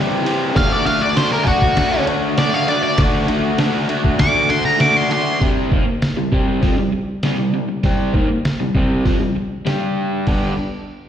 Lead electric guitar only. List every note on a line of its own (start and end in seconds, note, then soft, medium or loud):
0.57 0.72 F5 medium
0.72 0.86 D5 medium
0.86 1.01 F5 loud
1.02 1.17 D5 loud
1.17 1.31 C5 medium
1.32 1.46 A#4 medium
1.44 2.04 F#4 loud
2.38 2.54 D5 medium
2.54 2.69 F5 loud
2.69 2.82 D5 medium
2.83 2.98 D5 loud
4.20 4.49 D6 loud
4.50 4.65 C6 loud
4.65 4.80 A#5 loud
4.81 4.97 D6 medium
4.97 5.11 C6 medium
5.12 5.41 C6 loud